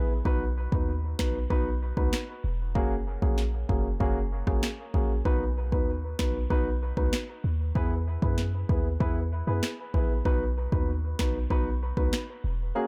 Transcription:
Already playing: 808-style bass A#1, grand piano B3 E4 G#4 B4, downlifter
0.25 808-style bass B1, grand piano B3 D#4 F#4 B4, kick
0.72 808-style bass D#2, grand piano B3 D#4 F#4 B4, kick
1.19 808-style bass B1, grand piano B3 D#4 F#4 B4, finger snap, kick, snare
1.50 808-style bass B1, grand piano B3 D#4 F#4 B4, kick
1.97 808-style bass C#2, grand piano B3 D#4 F#4 B4, kick
2.13 finger snap, snare
2.44 808-style bass E1
2.75 808-style bass F#1, grand piano A#3 C#4 F#4 G#4, kick
3.22 808-style bass A#1, grand piano A#3 C#4 F#4 G#4, kick
3.38 snare
3.69 808-style bass F#1, grand piano A#3 C#4 F#4 G#4, kick
4.00 808-style bass F#1, grand piano A#3 C#4 F#4 G#4, kick
4.47 808-style bass G#1, grand piano A#3 C#4 F#4 G#4, kick, cross-stick
4.63 finger snap, snare
4.94 808-style bass A#1, grand piano A#3 C#4 F#4 G#4, kick
5.25 808-style bass B1, grand piano B3 D#4 F#4 B4, kick
5.72 808-style bass D#2, grand piano B3 D#4 F#4 B4, kick
6.19 808-style bass B1, grand piano B3 D#4 F#4 B4, finger snap, kick, snare
6.50 808-style bass B1, grand piano B3 D#4 F#4 B4, kick
6.97 808-style bass C#2, grand piano B3 D#4 F#4 B4, kick
7.13 finger snap, snare
7.44 808-style bass D#2
7.75 808-style bass E2, grand piano B3 E4 G#4 B4, kick
8.22 808-style bass F#2, grand piano B3 E4 G#4 B4, kick
8.38 snare
8.69 808-style bass D#2, grand piano B3 E4 G#4 B4, kick
9.00 808-style bass E2, grand piano B3 E4 G#4 B4, kick
9.47 808-style bass F#2, grand piano B3 E4 G#4 B4
9.63 finger snap, snare
9.94 808-style bass A#1, grand piano B3 E4 G#4 B4, kick
10.25 808-style bass B1, grand piano B3 D#4 F#4 B4, kick
10.72 808-style bass D#2, grand piano B3 D#4 F#4 B4, kick
11.19 808-style bass B1, grand piano B3 D#4 F#4 B4, finger snap, kick, snare
11.50 808-style bass B1, grand piano B3 D#4 F#4 B4, kick
11.97 808-style bass C#2, grand piano B3 D#4 F#4 B4, kick
12.13 finger snap, snare
12.44 808-style bass E1
12.75 grand piano A#3 C#4 F#4 G#4

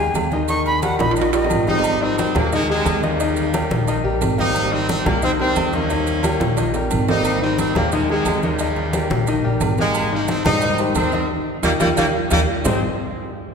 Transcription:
Already playing: upright bass D#2, flute G#5
0.00 grand piano G#3 G4 G#4
0.14 upright bass D#2, high conga, low timbale, low agogo, maracas
0.31 grand piano D#3 D#4 D#5, high conga, maracas
0.48 grand piano D#3 D#4 D#5, flute C#6, high conga, low agogo, maracas
0.66 flute B5, high conga, low agogo
0.82 grand piano G3 G4 A#4, flute F#5, high conga, low timbale, low agogo, maracas
0.99 upright bass A#1, grand piano D#3 D#4 D#5, flute B5, high conga, high timbale, maracas
1.11 high timbale
1.16 flute D#5, high conga, low agogo, maracas
1.22 high timbale
1.33 grand piano G3 G4 A#4, flute D#5, high conga, high timbale, maracas
1.44 low timbale
1.50 upright bass G#1, high conga, low agogo, maracas
1.67 grand piano G3 G4 G#4, horn section G3 C4 D#4, high conga, maracas
1.79 low timbale
1.84 high conga, low agogo, maracas
2.02 grand piano D#3 D#4 D#5, horn section C4, high conga
2.18 horn section C4, high conga, low timbale, low agogo, maracas
2.35 upright bass D#2, grand piano G3 G4 G#4, horn section A#3, high conga, low conga, low agogo, maracas
2.52 horn section C3 D#3 G#3, grand piano D#3 D#4 D#5, high conga, maracas
2.69 horn section C3 D#3 G#3, grand piano G#3 G4 G#4, high conga, low agogo
2.85 upright bass D#2, high conga, low timbale, low agogo, maracas
3.03 horn section A#2 C#3 G3, grand piano D#3 D#4 D#5, high conga, maracas
3.20 grand piano D#3 D#4 D#5, high conga, low agogo, maracas
3.36 high conga, low agogo, maracas
3.53 grand piano G3 G4 A#4, high conga, low timbale, low agogo, maracas
3.70 upright bass A#1, high conga, maracas
3.88 grand piano D#3 D#4 D#5, high conga, low agogo, maracas
4.04 upright bass A#1, grand piano G3 G4 A#4, high conga
4.21 upright bass G#1, high conga, low timbale, low agogo, maracas
4.38 horn section G3 C4 D#4, grand piano A#3 G4 A#4, high conga, maracas
4.55 high conga, low agogo, maracas
4.72 grand piano D#3 D#4 D#5, horn section C4, high conga
4.89 horn section C4, high conga, low timbale, low agogo, maracas
5.05 upright bass C2, grand piano G3 G4 G#4, horn section A#3, high conga, low conga, low agogo, maracas
5.22 grand piano D#3 D#4 D#5, horn section D#3 G3 C4, high conga, maracas
5.39 grand piano D#3 G4 C5, horn section D#3 G3 C4, high conga, low agogo
5.56 upright bass D#2, high conga, low timbale, low agogo, maracas
5.73 grand piano D#3 D#4 D#5, horn section G3 A#3 C#4, high conga, maracas
5.90 grand piano D#3 D#4 D#5, high conga, low agogo, maracas
6.07 high conga, low agogo, maracas
6.23 grand piano G3 G4 A#4, high conga, high timbale, low agogo, maracas
6.40 upright bass A#1, high conga, high timbale, maracas
6.57 grand piano D#3 D#4 D#5, high conga, high timbale, low agogo, maracas
6.74 grand piano G3 G4 A#4, high conga, low timbale, maracas
6.91 upright bass G#1, high conga, low agogo, maracas
7.08 horn section G3 C4 D#4, grand piano A#3 G4 A#4, high conga, low timbale, maracas
7.24 high conga, low agogo, maracas
7.42 grand piano D#3 D#4 D#5, horn section C4, high conga
7.58 horn section C4, high conga, low timbale, low agogo, maracas
7.75 upright bass D#2, grand piano G3 G4 G#4, horn section A#3, high conga, low conga, low agogo, maracas
7.92 horn section C3 D#3 G#3, grand piano D#3 D#4 D#5, high conga, low conga, maracas
8.09 horn section C3 D#3 G#3, grand piano G#3 G4 G#4, high conga, low agogo
8.25 upright bass D#2, high conga, low timbale, low agogo, maracas
8.42 horn section A#2 C#3 G3, grand piano D#3 D#4 D#5, high conga, maracas
8.59 grand piano D#3 D#4 D#5, high conga, low agogo, maracas
8.76 high conga, low agogo
8.93 grand piano G3 G4 A#4, high conga, low timbale, low agogo, maracas
9.10 upright bass A#1, high conga, maracas
9.27 grand piano D#3 D#4 D#5, high conga, low agogo, maracas
9.43 upright bass A#1, grand piano G3 G4 A#4, high conga
9.60 upright bass G#1, high conga, low timbale, low agogo, maracas
9.78 horn section C3 D#3 G#3, grand piano A#3 G4 G#4, high conga, maracas
9.94 high conga, low agogo, maracas
10.12 grand piano D#3 D#4 D#5, horn section A#3, high conga
10.28 horn section C4, high conga, low timbale, low agogo, maracas
10.45 upright bass G#2, grand piano G3 G4 G#4, horn section G3 C4 D#4, high conga, low conga, low agogo, maracas
10.61 grand piano D#3 D#4 D#5, high conga, maracas
10.78 grand piano D#3 G4 C5, high conga, low agogo, maracas
10.95 upright bass D#2, horn section D#3 G3 C4, high conga, low timbale, low agogo, maracas
11.12 grand piano D#3 D#4 D#5, high conga, maracas
11.63 upright bass D#2, horn section D#3 G3 A#3, grand piano D#4 G4 A#4, high conga, high timbale, maracas
11.80 upright bass D#2, horn section D#3 G3 A#3, grand piano D#4 G4 A#4, high conga, high timbale, maracas
11.97 upright bass D#2, horn section D#3 G3 A#3, grand piano D#4 G4 A#4, high conga, high timbale, maracas
12.31 upright bass D#2, horn section D#3 G3 A#3, grand piano D#4 G4 A#4, high conga, high timbale, maracas
12.64 upright bass G#1, grand piano G#3 D#4 G4 G#4 C5 D#5, horn section C4, low conga, low timbale, maracas

